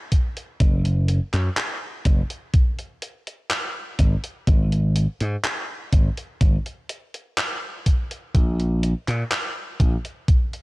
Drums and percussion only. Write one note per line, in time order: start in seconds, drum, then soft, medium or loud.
0.12 kick medium
0.12 closed hi-hat medium
0.37 closed hi-hat medium
0.60 kick loud
0.60 closed hi-hat medium
0.85 closed hi-hat soft
1.08 closed hi-hat medium
1.33 clap soft
1.33 closed hi-hat medium
1.57 clap loud
1.57 closed hi-hat medium
2.05 kick loud
2.05 closed hi-hat medium
2.30 closed hi-hat medium
2.54 kick loud
2.54 closed hi-hat medium
2.79 closed hi-hat soft
3.02 closed hi-hat medium
3.27 closed hi-hat medium
3.50 clap loud
3.50 closed hi-hat medium
3.99 kick medium
3.99 closed hi-hat medium
4.24 closed hi-hat medium
4.47 kick loud
4.47 closed hi-hat medium
4.72 closed hi-hat soft
4.96 closed hi-hat medium
5.21 closed hi-hat medium
5.44 clap loud
5.44 closed hi-hat medium
5.93 kick loud
5.93 closed hi-hat medium
6.17 closed hi-hat medium
6.41 kick loud
6.41 closed hi-hat medium
6.66 closed hi-hat soft
6.89 closed hi-hat medium
7.14 closed hi-hat medium
7.38 clap loud
7.38 closed hi-hat medium
7.86 kick medium
7.86 closed hi-hat medium
8.11 closed hi-hat medium
8.35 kick loud
8.35 closed hi-hat medium
8.60 closed hi-hat soft
8.83 closed hi-hat medium
9.08 clap soft
9.08 closed hi-hat medium
9.31 clap loud
9.31 closed hi-hat medium
9.80 kick loud
9.80 closed hi-hat medium
10.05 closed hi-hat soft
10.28 kick loud
10.28 closed hi-hat medium
10.53 closed hi-hat soft